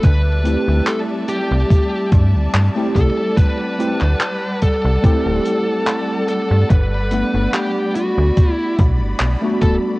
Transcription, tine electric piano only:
X:1
M:4/4
L:1/16
Q:"Swing 16ths" 1/4=72
K:Dmix
V:1 name="Tine electric piano"
z2 [A,CEG]8- [A,CEG]3 [A,CEG]3- | [A,CEG]2 [A,CEG] z4 z [A,CEG]8 | z2 [A,B,Df]8- [A,B,Df]3 [A,B,DF]3 |]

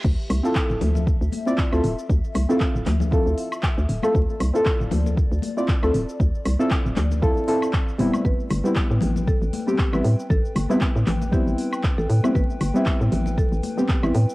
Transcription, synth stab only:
X:1
M:4/4
L:1/16
Q:"Swing 16ths" 1/4=117
K:Dm
V:1 name="Synth stab"
z3 [CEFA]8 [CEFd] z [CEFA] z2 | z3 [CEFA] z4 [CEFA]6- [CEFA] [CEFA] | z3 [CEFA]8 [CEFd] z [CEFA] z2 | z3 [CEFA] z4 [CEFA]2 [CEFA] z3 [G,=B,CE]2- |
[G,=B,CE]3 [G,B,CE]8 [G,B,CG] z [G,B,CE] z2 | z3 [G,=B,CE] z4 [G,B,CE]6- [G,B,CE] [G,B,CE] | z3 [G,=B,CE]8 [G,B,CG] z [G,B,CE] z2 |]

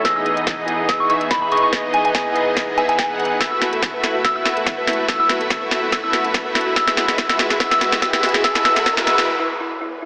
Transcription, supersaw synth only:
X:1
M:4/4
L:1/16
Q:"Swing 16ths" 1/4=143
K:E
V:1 name="Supersaw synth"
[E,B,]8- [E,B,]2 [E,B,DGe]4 [E,B,DGd]2 | [E,B,]8- [E,B,]2 [E,B,DGe]3 [E,B,DGf]3 | [A,EFe]8 [A,EFB]8 | [A,EFe]8 e8 |
[G,EB]4 [EF]4 F4 [G,EFBe]4 | [G,EB]2 [G,EFBe]2 [G,EFBe]2 [G,EFBe]2 z8 |]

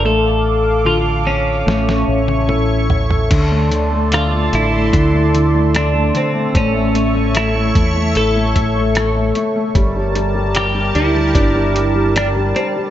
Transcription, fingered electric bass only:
X:1
M:4/4
L:1/8
Q:1/4=74
K:Dm
V:1 name="Fingered electric bass" clef=bass
A,,,4 A,,, A,,,3 | D,,3 A,,, D,,3 z | A,,,3 E,, A,,,3 z | G,,,3 D,, G,,,3 z |]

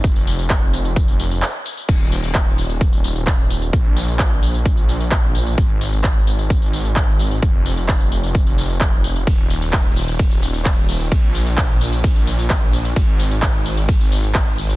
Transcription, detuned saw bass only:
X:1
M:4/4
L:1/8
Q:1/4=130
K:Bbdor
V:1 name="Detuned saw bass" clef=bass
F,,,6 z2 | E,,,8 | B,,,8 | A,,,8 |
F,,,8 | E,,,8 | B,,,8 | A,,,8 |]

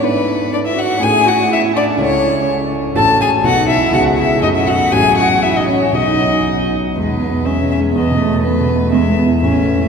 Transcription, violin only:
X:1
M:2/4
L:1/16
Q:1/4=122
K:A
V:1 name="Violin"
B4 d e f2 | g2 f2 e2 d2 | c4 z4 | [K:E] a2 g2 f2 e2 |
f2 e2 d e f2 | g2 f2 e d c2 | d6 z2 | B4 e2 e2 |
d4 B4 | e4 e4 |]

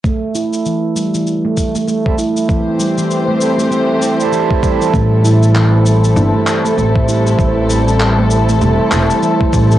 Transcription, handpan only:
X:1
M:4/4
L:1/16
Q:"Swing 16ths" 1/4=98
K:Am
V:1 name="Handpan"
A,2 E z E, z G, E,2 A,2 A, A,2 E z | E, z G, E,2 A,2 A, A,2 E z E, z G, E, | A,2 E z E, z G, E,2 A,2 A, A,2 E z | E, z G, E,2 A,2 A, A,2 E z E, z G, E, |]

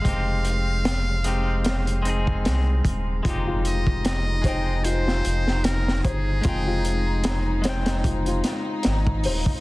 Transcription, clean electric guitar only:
X:1
M:4/4
L:1/8
Q:"Swing 16ths" 1/4=75
K:Fm
V:1 name="Clean electric guitar"
[A,CEG]3 [A,CEG]2 [A,CEA]3 | [A,CEG]3 [A,CEg]4- [A,CEg] | [A,CEg]3 [A,CEg]4- [A,CEg] |]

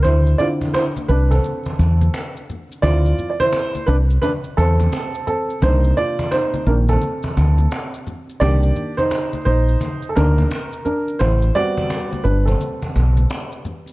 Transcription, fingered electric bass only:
X:1
M:4/4
L:1/8
Q:"Swing 16ths" 1/4=86
K:C
V:1 name="Fingered electric bass" clef=bass
D,, z2 C,, z E,, z2 | D,, z2 C,, z E,, z2 | C,, z2 _B,,, z D,, z2 | C,, z2 _B,,, z D,, z2 |
A,,, z2 G,,, z B,,, z2 |]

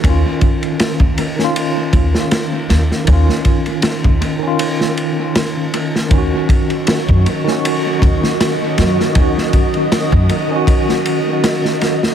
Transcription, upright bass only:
X:1
M:4/4
L:1/16
Q:"Swing 16ths" 1/4=79
K:Ebm
V:1 name="Upright bass" clef=bass
E,, z4 E,, z4 E,, z3 E,, z | E,, z4 E,, z8 z2 | E,, z4 G,, z4 E,, z3 G,, z | E,, z4 G,, z8 z2 |]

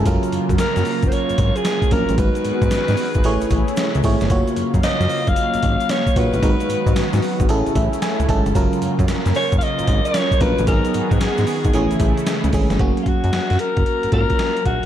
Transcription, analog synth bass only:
X:1
M:4/4
L:1/16
Q:"Swing 16ths" 1/4=113
K:F#
V:1 name="Analog synth bass" clef=bass
F,,, z F,, F,, z F,, z F,,, z G,,, G,,, z3 A,,, =A,,, | G,,, z G,, G,, G,, G,, z G,,, =A,,, A,,, A,,, z2 C,, G,,, =G,,, | F,,, z F,, F,, z F,, z F,,, z G,,, G,,, z3 A,,, =A,,, | G,,, z G,, G,, z G,, z G,,, =A,,, A,,, A,,, z2 C,, G,,, =G,,, |
F,,, z F,, F,, z F,, z F,,, z G,,, G,,, z3 A,,, =A,,, | G,,, z G,, G,, z G,, z G,,, =A,,, A,,, A,,, z2 C,, G,,, =G,,, | F,,, z F,, F,, z F,, z F,,, z G,,, G,,, z3 A,,, z |]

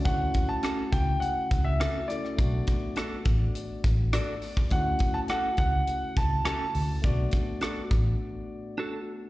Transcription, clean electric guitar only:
X:1
M:4/4
L:1/8
Q:1/4=103
K:D
V:1 name="Clean electric guitar"
z2 [CFA] z3 [CFA] z | z2 [DFA] z3 [DFA] z | z2 [CFA] z3 [CFA] z | z2 [DFA] z3 [DFA] z |]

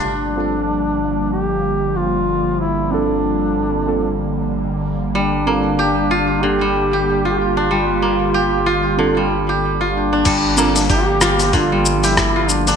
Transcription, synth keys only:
X:1
M:4/4
L:1/16
Q:"Swing 16ths" 1/4=94
K:Gm
V:1 name="Synth keys"
z2 [CFA] z12 z | z2 [CFA]6 [CFA] z6 z | z2 [CFA] z12 z | z8 [CFA] z6 z |
z2 [CFA] z12 z |]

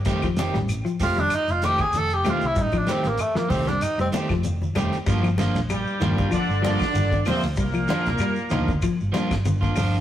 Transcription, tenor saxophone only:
X:1
M:4/4
L:1/16
Q:"Swing 16ths" 1/4=96
K:Gm
V:1 name="Tenor saxophone"
z6 F D E F G _A =A G F =E | E D C B, A, B, C D E C z6 | z16 | z16 |]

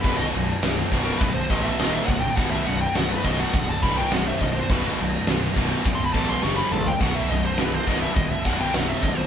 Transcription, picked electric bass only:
X:1
M:4/4
L:1/8
Q:1/4=104
K:B
V:1 name="Picked electric bass" clef=bass
B,,,, B,,,, B,,,, B,,,, B,,,, =A,,, D,,, =C,,, | B,,,, B,,,, B,,,, B,,,, D,,, B,,,, B,,,, B,,,, | B,,,, B,,,, B,,,, B,,,, B,,,, =A,,, F,,, A,,, | B,,,, B,,,, B,,,, B,,,, D,,, B,,,, B,,,, B,,,, |]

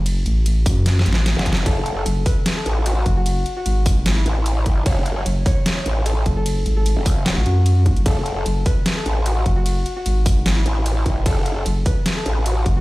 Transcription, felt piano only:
X:1
M:4/4
L:1/16
Q:"Swing 16ths" 1/4=150
K:F#m
V:1 name="Felt piano"
z16 | A3 A3 B3 A3 F3 F- | F2 z F3 z3 E6 z | c3 c3 c3 c3 A3 A- |
A2 z A3 z3 F6 z | A3 A3 B3 A3 F3 F- | F2 z F3 z3 E6 z | A3 A3 B3 A3 F3 F |]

